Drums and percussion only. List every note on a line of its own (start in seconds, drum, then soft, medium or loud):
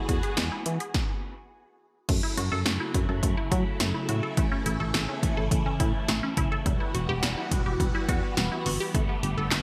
0.09 kick loud
0.09 closed hi-hat medium
0.23 closed hi-hat soft
0.37 snare loud
0.37 closed hi-hat medium
0.66 closed hi-hat medium
0.80 closed hi-hat soft
0.94 kick loud
0.94 snare medium
2.09 kick loud
2.09 closed hi-hat medium
2.09 crash medium
2.37 closed hi-hat medium
2.66 snare loud
2.66 closed hi-hat medium
2.94 kick medium
2.94 closed hi-hat medium
3.23 kick medium
3.23 closed hi-hat medium
3.52 kick medium
3.52 closed hi-hat medium
3.80 snare loud
3.80 closed hi-hat medium
4.09 closed hi-hat medium
4.37 kick loud
4.37 closed hi-hat medium
4.66 closed hi-hat medium
4.94 snare loud
4.94 closed hi-hat medium
5.23 kick medium
5.23 closed hi-hat medium
5.51 kick loud
5.51 closed hi-hat medium
5.80 kick medium
5.80 closed hi-hat medium
6.08 snare loud
6.08 closed hi-hat medium
6.37 kick medium
6.37 closed hi-hat medium
6.66 kick loud
6.66 closed hi-hat medium
6.95 closed hi-hat medium
7.23 snare loud
7.23 closed hi-hat medium
7.51 kick medium
7.51 closed hi-hat medium
7.80 kick loud
7.80 closed hi-hat medium
8.09 kick medium
8.09 closed hi-hat medium
8.37 snare loud
8.37 closed hi-hat medium
8.66 open hi-hat medium
8.95 kick loud
8.95 closed hi-hat medium
9.23 closed hi-hat medium
9.51 snare loud
9.51 clap loud
9.51 closed hi-hat medium